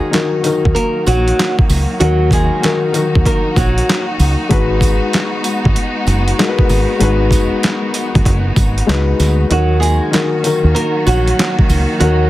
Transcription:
Already playing: D#3 F#3 G#3 A#3 D#4 F#4 G#4 A#4
0.11 D#3 D#4 F#4 A#4, snare, closed hi-hat
0.15 clap
0.43 D#3 D#4 F#4 A#4, closed hi-hat, tambourine
0.65 D#2, kick
0.75 A#3 A#4, closed hi-hat
1.06 A#1 F#3 F#4, closed hi-hat, tambourine
1.28 closed hi-hat
1.39 snare, clap, closed hi-hat
1.59 kick
1.69 C#2, open hi-hat, tambourine
2.00 D#2 D#3 F#3 D#4 F#4 A#4, closed hi-hat
2.31 G#3 G#4, kick, closed hi-hat, tambourine
2.62 D#3 D#4 F#4 A#4, snare, clap, closed hi-hat
2.92 D#3 D#4 F#4 A#4, closed hi-hat, tambourine
3.15 D#2, kick
3.26 A#3 A#4, kick, closed hi-hat
3.56 A#1 F#3 F#4, kick, closed hi-hat, tambourine
3.78 closed hi-hat
3.89 snare, clap, closed hi-hat
4.19 C#2, open hi-hat, tambourine
4.49 G#1 G#3 B3 D#4 F#4 B4, kick, closed hi-hat
4.81 kick, closed hi-hat, tambourine
5.13 snare, clap, closed hi-hat
5.44 closed hi-hat, tambourine
5.65 G#1, kick
5.76 closed hi-hat
6.07 F#1, closed hi-hat, tambourine
6.28 closed hi-hat
6.39 G#3 D#4 F#4 A#4, snare, clap, closed hi-hat
6.48 B4
6.59 kick
6.69 G#1, open hi-hat, tambourine
6.99 G#1 G#3 D#4 F#4 B4, closed hi-hat
7.31 kick, closed hi-hat, tambourine
7.63 snare, clap, closed hi-hat
7.94 closed hi-hat, tambourine
8.15 G#1, kick, closed hi-hat
8.25 F#1, kick, closed hi-hat
8.56 G#1, kick, closed hi-hat, tambourine
8.78 closed hi-hat
8.87 C#2 G#3 D#4 F#4 B4, snare, clap, closed hi-hat
9.19 D2, snare, closed hi-hat, tambourine
9.50 D#2 D#3 F#3 A#3 D#4 F#4 A#4, closed hi-hat
9.80 G#3 G#4, closed hi-hat, tambourine
10.11 D#3 D#4 F#4 A#4, snare, closed hi-hat
10.15 clap
10.43 D#3 D#4 F#4 A#4, closed hi-hat, tambourine
10.64 D#2
10.75 A#3 A#4, closed hi-hat
11.06 A#1 F#3 F#4, closed hi-hat, tambourine
11.27 closed hi-hat
11.39 snare, clap, closed hi-hat
11.59 kick
11.69 C#2, open hi-hat, tambourine
12.00 D#2 D#3 F#3 D#4 F#4 A#4, closed hi-hat

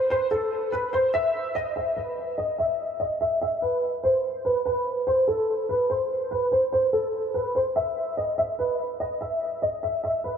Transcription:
0.10 C5
0.31 A4
0.72 B4
0.93 C5
1.14 E5
1.55 D#5
1.76 E5
1.97 B4
2.38 D#5
2.58 E5
3.00 D#5
3.21 E5
3.41 E5
3.62 B4
4.03 C5
4.45 B4
4.65 B4
5.07 C5
5.28 A4
5.69 B4
5.90 C5
6.31 B4
6.52 C5
6.72 C5
6.93 A4
7.34 B4
7.55 C5
7.76 E5
8.17 D#5
8.38 E5
8.59 B4
9.00 D#5
9.21 E5
9.62 D#5
9.83 E5
10.04 E5
10.24 B4

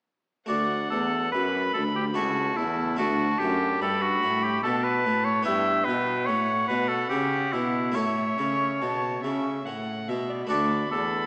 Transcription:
0.46 D2 A3 F#4 D5 F#5
0.90 E2 A4
1.32 F#2 B4 B5
1.74 D2 A4
1.96 G4
2.14 C#2 A3 E4 F#4 A5
2.57 E2 E4
2.96 D2 A3 D4 F#4 A5
3.39 F#2 G4
3.81 G2 A4 B5
4.02 F#4
4.22 A2
4.44 G4
4.63 B2 A4 A5
4.84 B4
5.05 A2
5.25 C#5
5.43 B3 E4 E5 G5
5.47 G2
5.85 B2 B4
6.26 A2 C#5 F#5
6.68 B2 B4
6.88 A4
7.09 C#3 G4
7.53 B2 E4
7.92 A3 E4 A4 C#5 E5
7.96 A2
8.39 C#3
8.81 B2 A5
9.23 C#3 E5
9.66 A2 F#5
10.08 B2 E5
10.29 D5
10.47 D2 A3 F#4 A4 D5 B5
10.51 D2
10.91 E2 A4

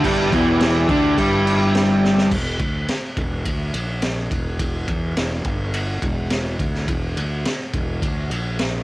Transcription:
Already playing: E4 G4 D5
0.04 G1 G2 G3, kick, crash
0.32 E1 E2 E3, kick, crash
0.60 snare, crash
0.89 D2 D3 D4, kick, crash
1.17 G1 G2 G3, kick, crash
1.47 crash
1.75 snare, crash
2.04 snare
2.18 snare
2.31 E1, kick, crash
2.59 D2, kick, ride
2.88 muted fingered electric bass stroke, snare, ride
3.17 E1, kick, ride
3.45 D2, kick, ride
3.74 A#1, ride
4.02 snare, ride
4.31 E1, kick, ride
4.59 kick, ride
4.88 E2, kick, ride
5.17 E1, snare, ride
5.45 G1, kick, ride
5.74 ride
6.02 E1, kick, ride
6.30 snare, ride
6.59 D2, kick, ride
6.75 snare
6.88 E1, kick, ride
7.17 D2, ride
7.45 muted fingered electric bass stroke, snare, ride
7.74 E1, kick, ride
8.02 D2, kick, ride
8.30 A#1, ride
8.59 snare, ride

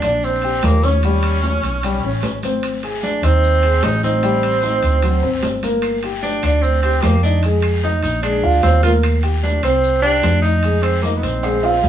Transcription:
Already playing: D4
0.02 A#1 D4 D5, high conga, high timbale, short guiro, maracas
0.23 C4, high conga, long guiro, maracas
0.42 G4 G5, high conga, high timbale, maracas
0.63 D#2 A#3, high conga, high timbale, low timbale, short guiro, maracas
0.83 C#4 C#5, high conga, short guiro, maracas
1.03 G3 G4, high conga, high timbale, long guiro, maracas
1.23 high conga, high timbale, maracas
1.43 C#4 C#5, high conga, low timbale, short guiro, maracas
1.63 B1, high conga, high timbale, short guiro, maracas
1.83 G3 G4, high conga, high timbale, long guiro, maracas
2.03 A1 C#4 C#5, high conga, maracas
2.23 G#1, high timbale, low timbale, short guiro, maracas
2.43 C4 C5, high conga, high timbale, short guiro, maracas
2.63 high timbale, long guiro, maracas
2.83 G#4 G#5, high timbale, maracas
3.03 D4, high conga, low timbale, short guiro, maracas
3.22 D#2 C4 D#4 D#5, high timbale, short guiro, maracas
3.43 high conga, long guiro, maracas
3.63 G#4 G#5, high conga, high timbale, maracas
3.83 A1 D#4, high conga, high timbale, low timbale, short guiro, maracas
4.03 C4 D#4 D#5, high conga, short guiro, maracas
4.23 G3 G4, high conga, high timbale, long guiro, maracas
4.43 high conga, high timbale, maracas
4.63 D#4 D#5, high conga, low timbale, short guiro, maracas
4.83 D2, high conga, high timbale, short guiro, maracas
5.02 F#3 F#4, high timbale, long guiro, maracas
5.23 C4 C5, high conga, maracas
5.43 G1, high timbale, low timbale, short guiro, maracas
5.63 A#3 A#4, high conga, high timbale, short guiro, maracas
5.82 high conga, high timbale, long guiro, claves, maracas
6.03 G4 G5, high conga, high timbale, maracas
6.23 D4, high conga, low timbale, short guiro, maracas
6.43 D2 D4 D5, high conga, high timbale, short guiro, claves, maracas
6.62 C4, high conga, long guiro, maracas
6.82 C4 G4 G5, high conga, high timbale, maracas
7.02 F2 A#3, high conga, high timbale, low timbale, short guiro, claves, maracas
7.23 D4 D#4 D#5, short guiro, maracas
7.43 G#3 G#4, high conga, high timbale, long guiro, maracas
7.62 high conga, high timbale, claves, maracas
7.83 D#4 D#5, high conga, low timbale, short guiro, maracas
8.03 A#1 D#4, high conga, high timbale, short guiro, maracas
8.23 G#3 D4 G#4, high timbale, long guiro, claves, maracas
8.43 D2 F4 F5, maracas
8.63 D#2 C4, high timbale, low timbale, short guiro, maracas
8.83 A#3 F4 A#4, high conga, high timbale, short guiro, maracas
9.03 high timbale, long guiro, claves, maracas
9.23 G4 G5, high conga, high timbale, maracas
9.43 D4, high conga, low timbale, short guiro, maracas
9.63 C2 C4 C5, high conga, high timbale, short guiro, claves, maracas
9.83 high conga, long guiro, maracas
10.02 D4 G4 G5, high conga, high timbale, maracas
10.23 F2, high conga, high timbale, low timbale, short guiro, claves, maracas
10.42 D#4 D#5, short guiro, maracas
10.63 G#3 G#4, high conga, high timbale, long guiro, maracas
10.82 C4, high conga, high timbale, claves, maracas
11.02 A#3 D#4 D#5, high conga, low timbale, short guiro, maracas
11.16 B3
11.23 A#1 C4, high conga, high timbale, short guiro, maracas
11.43 G#3 G#4, high timbale, long guiro, claves, maracas
11.63 F4 F5, high timbale, maracas
11.83 D#2, high conga, low timbale, short guiro, maracas

